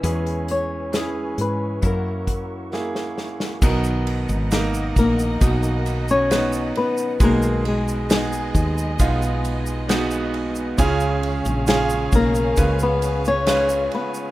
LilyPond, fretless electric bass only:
\new Staff \with { instrumentName = "Fretless electric bass" } { \clef bass \time 4/4 \key fis \mixolydian \tempo 4 = 67 e,4. gis,8 fis,2 | \key b \lydian b,,8. gis,,8. ais,,8 b,,4. r8 | b,,4. dis,8 b,,2 | cis,8. ais,,8. b,,8 cis,4. r8 | }